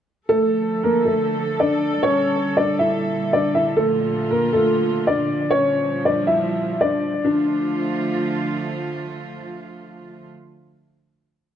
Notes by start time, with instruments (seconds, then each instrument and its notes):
0.29 string section D3 F3 A3 A4, upright piano A3 A4
0.83 upright piano A#3 A#4
1.05 upright piano A3 A4
1.60 upright piano D4 D5
2.03 string section A#2 D3 G3, upright piano C#4 C#5
2.57 upright piano D4 D5
2.79 upright piano E4 E5
3.33 upright piano D4 D5
3.55 upright piano E4 E5
3.77 string section F3 F4, upright piano A3 A4
4.31 upright piano A#3 A#4
4.53 upright piano A3 A4
5.07 upright piano D4 D5
5.51 string section F3 G3, upright piano C#4 C#5
6.05 upright piano D4 D5
6.27 upright piano E4 E5
6.81 upright piano D4 D5
7.24 string section D3 F3 A3 F4, upright piano D4